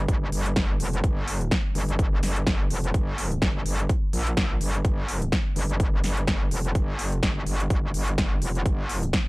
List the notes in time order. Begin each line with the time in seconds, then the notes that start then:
Already playing: G3 D4 A#4 G5
0.08 G1, kick, closed hi-hat
0.32 G1, open hi-hat
0.46 closed hi-hat
0.56 kick, snare, closed hi-hat
0.80 F1, open hi-hat
0.93 closed hi-hat
1.04 G1 C6, kick, closed hi-hat
1.28 open hi-hat
1.41 closed hi-hat
1.51 kick, snare, closed hi-hat
1.75 G1, open hi-hat
1.89 closed hi-hat
1.99 kick, closed hi-hat
2.23 G1, snare, open hi-hat
2.36 closed hi-hat
2.47 kick, snare, closed hi-hat
2.70 F1, open hi-hat
2.84 closed hi-hat
2.94 G1, kick, closed hi-hat
3.18 open hi-hat
3.32 closed hi-hat
3.42 G1, kick, snare, closed hi-hat
3.66 G1, open hi-hat
3.79 closed hi-hat
3.89 kick, closed hi-hat
4.13 A#1, open hi-hat
4.27 closed hi-hat
4.37 kick, snare, closed hi-hat
4.61 G1, open hi-hat
4.74 closed hi-hat
4.85 G1 G5, kick, closed hi-hat
5.08 open hi-hat
5.22 closed hi-hat
5.32 kick, snare, closed hi-hat
5.56 G1, open hi-hat
5.70 closed hi-hat
5.80 kick, closed hi-hat
6.04 G1, snare, open hi-hat
6.17 closed hi-hat
6.27 kick, snare, closed hi-hat
6.51 F1, open hi-hat
6.65 closed hi-hat
6.75 G1, kick, closed hi-hat
6.99 open hi-hat
7.12 closed hi-hat
7.23 G1, kick, snare, closed hi-hat
7.46 G1, open hi-hat
7.60 closed hi-hat
7.70 G1, kick, closed hi-hat
7.94 G1, open hi-hat
8.08 closed hi-hat
8.18 kick, snare, closed hi-hat
8.42 F1, open hi-hat
8.55 closed hi-hat
8.66 G1 D5, kick, closed hi-hat
8.89 open hi-hat
9.03 closed hi-hat
9.13 kick, snare, closed hi-hat